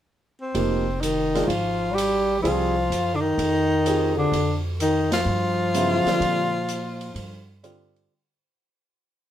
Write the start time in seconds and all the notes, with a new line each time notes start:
0.41 C4
0.55 F1 F3 A#3 D#4 G4, ride
1.01 D#3 D#4, hi-hat pedal, ride
1.35 D#3 G#3 D4 F4, snare, ride
1.45 G#1 F3 F4
1.50 ride
1.92 G3 G4
1.98 hi-hat pedal, ride
2.39 F3 F4
2.44 C2 G3 C4 F4 G#4, ride
2.90 F#2, hi-hat pedal, ride
3.14 D3 D4
3.20 D#3 D#4
3.38 F2, ride
3.86 C4 F4 G4 G#4, hi-hat pedal, ride
4.16 D3 D4
4.32 F2, ride
4.80 D#3 D#4, hi-hat pedal, ride
5.12 F3 F4, snare, ride
5.25 G2
5.74 C#3 F#3 B3 E4, hi-hat pedal, ride
6.05 D3 G3 C4 F4, muted upright bass stroke, snare, ride
6.20 A#2, ride
6.68 hi-hat pedal, ride
7.01 ride
7.15 G2, ride
7.63 D3 G3 C4 F4, hi-hat pedal, ride
7.96 ride